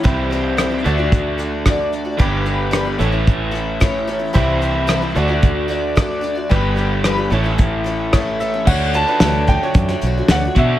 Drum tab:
CC |----------------|----------------|----------------|----------------|
HH |x-x-x-x-x-x-x-x-|x-x-x-x-x-x-x-x-|x-x-x-x-x-x-x-x-|x-x-x-x-x-x-x-x-|
SD |----r-------r---|----r-------r---|----r-------r---|----r-------r---|
BD |o-------o---o---|o-------o---o---|o-------o---o---|o-------o---o---|

CC |x---------------|
HH |--x-x-x-x-x-x-x-|
SD |----o----o--o---|
BD |o-----o-o-----o-|